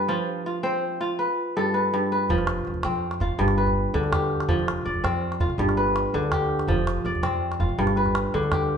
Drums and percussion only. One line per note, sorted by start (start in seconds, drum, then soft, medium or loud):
2.29 calabash thump medium
2.38 calabash click soft
2.47 calabash click medium
2.65 calabash click soft
2.74 calabash thump soft
2.83 calabash click medium
3.11 calabash click medium
3.20 calabash thump medium
3.39 calabash click soft
3.48 calabash click soft
3.58 calabash click soft
3.67 calabash thump soft
3.67 calabash click soft
4.03 calabash click soft
4.13 calabash thump medium
4.13 calabash click medium
4.40 calabash click soft
4.49 calabash thump medium
4.59 calabash click soft
4.68 calabash click medium
4.87 calabash click soft
4.95 calabash thump soft
5.05 calabash click medium
5.32 calabash click soft
5.40 calabash thump medium
5.50 calabash click soft
5.59 calabash click soft
5.69 calabash click soft
5.78 calabash click soft
5.87 calabash click soft
5.96 calabash click medium
6.23 calabash click soft
6.32 calabash thump medium
6.32 calabash click medium
6.59 calabash click soft
6.68 calabash thump medium
6.78 calabash click soft
6.87 calabash click medium
7.05 calabash click soft
7.15 calabash thump soft
7.23 calabash click medium
7.52 calabash click soft
7.60 calabash thump medium
7.69 calabash click soft
7.79 calabash click soft
7.87 calabash click soft
7.96 calabash click soft
8.06 calabash thump soft
8.06 calabash click soft
8.15 calabash click medium
8.43 calabash click soft
8.52 calabash thump medium
8.52 calabash click medium